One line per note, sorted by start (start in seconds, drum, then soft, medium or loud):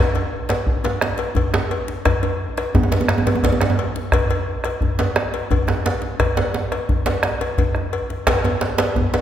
0.15 cowbell soft
0.15 djembe tone medium
0.49 bombo rim medium
0.49 cowbell medium
0.49 djembe slap medium
0.67 bombo low loud
0.67 djembe slap soft
0.84 cowbell medium
0.84 djembe slap medium
0.84 djembe tone medium
1.01 bombo rim loud
1.01 djembe slap medium
1.18 bombo rim soft
1.18 cowbell medium
1.18 djembe slap medium
1.35 bombo low loud
1.35 cowbell medium
1.35 djembe bass medium
1.54 bombo rim medium
1.54 djembe slap soft
1.54 djembe slap medium
1.54 djembe tone medium
1.71 cowbell soft
1.88 djembe slap medium
2.05 bombo rim medium
2.05 bombo low medium
2.05 cowbell medium
2.05 djembe slap soft
2.05 djembe bass medium
2.23 cowbell soft
2.23 djembe slap soft
2.23 djembe tone medium
2.57 bombo rim medium
2.57 cowbell medium
2.57 djembe slap medium
2.74 bombo rim soft
2.74 bombo low medium
2.74 djembe tone loud
2.74 djembe bass medium
2.83 djembe tone medium
2.92 cowbell soft
2.92 djembe slap medium
2.92 djembe tone medium
3.01 djembe tone medium
3.08 bombo rim medium
3.08 djembe slap medium
3.18 djembe tone medium
3.27 cowbell medium
3.27 djembe slap medium
3.27 djembe tone loud
3.35 djembe tone medium
3.43 bombo rim soft
3.43 bombo low loud
3.43 cowbell medium
3.43 djembe slap medium
3.43 djembe bass medium
3.53 djembe tone medium
3.61 bombo rim medium
3.61 djembe slap medium
3.61 djembe tone medium
3.70 djembe tone medium
3.79 cowbell soft
3.96 djembe slap medium
4.12 bombo rim loud
4.12 bombo low loud
4.12 cowbell medium
4.12 djembe slap soft
4.12 djembe bass medium
4.30 cowbell medium
4.30 djembe tone medium
4.64 bombo rim medium
4.64 cowbell medium
4.64 djembe slap medium
4.81 bombo low loud
4.81 djembe slap soft
4.81 djembe bass medium
4.99 cowbell soft
4.99 djembe slap medium
4.99 djembe tone medium
5.16 bombo rim loud
5.16 djembe slap medium
5.34 bombo rim soft
5.34 cowbell soft
5.34 djembe slap medium
5.51 bombo low loud
5.51 cowbell medium
5.51 djembe bass medium
5.67 bombo rim medium
5.67 djembe slap soft
5.67 djembe slap medium
5.67 djembe tone medium
5.86 cowbell soft
5.86 djembe slap medium
6.02 djembe slap medium
6.20 bombo rim medium
6.20 bombo low loud
6.20 cowbell medium
6.20 djembe slap soft
6.20 djembe bass medium
6.37 cowbell soft
6.37 djembe slap medium
6.37 djembe tone medium
6.54 djembe slap medium
6.72 bombo rim medium
6.72 cowbell medium
6.72 djembe slap medium
6.89 bombo low loud
6.89 djembe slap soft
6.89 djembe bass medium
7.06 cowbell medium
7.06 djembe slap medium
7.06 djembe tone medium
7.23 bombo rim loud
7.23 djembe slap medium
7.40 bombo rim soft
7.40 cowbell medium
7.40 djembe slap medium
7.58 bombo low loud
7.58 cowbell soft
7.58 djembe bass medium
7.75 bombo rim medium
7.75 djembe slap soft
7.75 djembe tone medium
7.93 cowbell medium
8.10 djembe slap medium
8.27 bombo rim loud
8.27 bombo low loud
8.27 cowbell medium
8.27 djembe slap loud
8.27 djembe slap soft
8.27 djembe bass medium
8.45 cowbell medium
8.45 djembe tone medium
8.61 djembe slap medium
8.78 bombo rim medium
8.78 cowbell medium
8.78 djembe slap loud
8.80 djembe slap medium
8.96 bombo low medium
8.96 djembe slap soft
8.96 djembe tone medium
8.96 djembe bass medium
9.14 cowbell medium
9.14 djembe slap medium
9.14 djembe tone medium